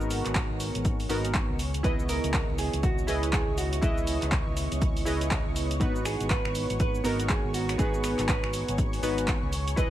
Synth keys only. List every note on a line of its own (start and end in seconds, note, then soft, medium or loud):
0.00 1.07 B3 medium
0.00 1.07 D#4 medium
0.00 1.08 F#4 medium
0.00 1.08 A#4 loud
1.09 1.58 B3 medium
1.09 1.58 D#4 medium
1.09 1.58 F#4 medium
1.09 1.58 A#4 medium
1.83 3.06 B3 medium
1.83 3.05 E4 medium
1.83 3.06 G#4 medium
1.83 3.06 D#5 loud
3.07 3.80 E4 medium
3.07 3.80 G#4 medium
3.07 3.80 B4 medium
3.07 3.81 D#5 medium
3.81 5.03 E4 medium
3.81 5.04 G#4 medium
3.81 5.04 B4 medium
3.81 5.05 D#5 loud
5.05 5.78 E4 medium
5.05 5.78 G#4 medium
5.05 5.79 B4 medium
5.05 5.79 D#5 medium
5.80 7.02 B3 medium
5.80 7.02 D#4 medium
5.80 7.03 F#4 medium
5.80 7.03 B4 loud
7.04 7.76 B3 medium
7.04 7.77 D#4 medium
7.04 7.77 F#4 medium
7.04 7.77 A#4 loud
7.78 9.00 B3 medium
7.78 9.01 D#4 medium
7.78 9.01 F#4 medium
7.78 9.01 B4 loud
9.03 9.51 B3 medium
9.03 9.51 D#4 medium
9.03 9.52 F#4 medium
9.03 9.52 B4 loud
9.76 9.90 E4 medium
9.76 9.90 G#4 medium
9.76 9.90 B4 medium
9.76 9.90 D#5 loud